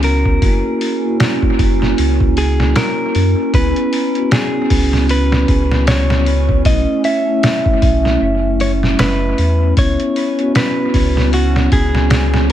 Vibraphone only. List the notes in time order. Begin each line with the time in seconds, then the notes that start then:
0.42 A#3 E4 F#4
1.02 A#3 E4 F#4
3.53 B3 C#4 E4
4.15 B3 C#4 F#4
6.65 A3 C#4 E4
7.26 A3 C#4 E4
9.77 B3 C#4 E4
10.38 B3 C#4 F#4